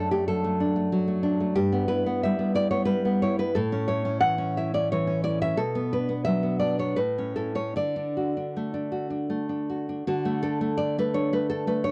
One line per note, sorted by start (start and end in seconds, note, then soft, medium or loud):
0.00 1.53 F#2 medium
0.00 0.11 A3 soft
0.00 0.59 D4 soft
0.00 0.11 A4 medium
0.11 0.43 A3 soft
0.11 0.27 G4 medium
0.28 0.91 F#3 soft
0.28 1.54 A4 medium
0.44 0.75 A3 soft
0.60 1.22 D4 soft
0.76 1.06 A3 soft
0.92 1.58 F#3 medium
1.08 1.39 A3 soft
1.23 1.57 D4 medium
1.40 1.57 A3 soft
1.55 3.51 G2 medium
1.55 1.88 G4 medium
1.72 2.05 B3 medium
1.88 2.53 E4 medium
1.88 2.21 B4 medium
2.06 2.38 B3 medium
2.23 2.85 G3 medium
2.23 2.55 E5 medium
2.39 2.70 B3 medium
2.55 3.22 E4 medium
2.55 2.70 D5 medium
2.71 3.04 B3 medium
2.71 2.85 C#5 medium
2.85 3.55 G3 medium
2.85 3.19 B4 medium
3.05 3.37 B3 medium
3.22 3.57 E4 medium
3.22 3.39 C#5 medium
3.39 3.55 B3 soft
3.39 3.56 B4 medium
3.55 5.54 A2 medium
3.55 3.88 A4 medium
3.72 4.04 C#4 medium
3.88 4.57 E4 medium
3.88 4.20 C#5 medium
4.05 4.37 C#4 medium
4.21 4.91 E3 medium
4.21 4.53 F#5 medium
4.38 4.73 C#4 medium
4.57 5.23 E4 medium
4.57 4.73 E5 medium
4.74 5.06 C#4 medium
4.74 4.90 D5 medium
4.92 5.57 E3 medium
4.92 5.23 C#5 medium
5.07 5.40 C#4 medium
5.24 5.59 E4 medium
5.24 5.41 D5 medium
5.42 5.59 C#4 soft
5.42 5.59 E5 medium
5.57 6.94 B2 medium
5.57 5.91 A4 medium
5.75 6.08 B3 soft
5.93 6.58 D4 soft
5.93 6.24 B4 medium
6.09 6.42 B3 soft
6.25 6.96 F#3 medium
6.25 6.59 E5 medium
6.43 6.77 B3 medium
6.59 6.97 D4 soft
6.59 6.79 D5 medium
6.79 6.96 B3 soft
6.79 6.98 C#5 medium
6.96 7.73 A2 medium
6.96 7.34 B4 medium
7.18 7.54 C#4 soft
7.36 7.76 E4 soft
7.36 7.56 A4 medium
7.55 7.75 C#4 soft
7.55 7.76 C#5 medium
7.76 10.01 D3 medium
7.76 9.64 D5 medium
7.96 8.36 D4 soft
8.17 8.90 F#4 soft
8.37 8.73 D4 soft
8.57 9.28 A3 soft
8.74 9.09 D4 soft
8.92 9.68 F#4 soft
9.10 9.48 D4 soft
9.30 10.06 A3 soft
9.49 9.88 D4 soft
9.69 10.06 F#4 soft
9.89 10.07 D4 soft
10.07 11.91 D3 medium
10.07 10.41 F#4 medium
10.25 10.60 A3 medium
10.43 10.77 D4 soft
10.43 10.77 A4 medium
10.61 10.97 A3 soft
10.77 11.14 D4 soft
10.77 10.96 D5 medium
10.98 11.31 A3 medium
10.98 11.16 B4 medium
11.14 11.50 D4 medium
11.14 11.32 C#5 medium
11.33 11.66 A3 soft
11.33 11.49 B4 medium
11.50 11.83 D4 medium
11.50 11.67 A4 medium
11.67 11.91 A3 medium
11.67 11.84 B4 medium
11.84 11.91 D4 soft
11.84 11.91 C#5 medium